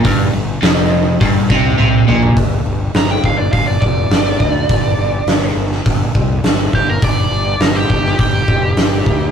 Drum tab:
HH |o---o---o-------|o---o---o---o---|o---o---o---o---|o---o---o---o---|
SD |----o-----------|----o-------o---|----o--o----o---|----o--o----o---|
T1 |------------o---|----------------|----------------|----------------|
T2 |--------------o-|----------------|----------------|----------------|
FT |---------------o|----------------|----------------|----------------|
BD |o-------o-o-----|o-----o-o-o---o-|o-------o-o---o-|o-----o-o-o---o-|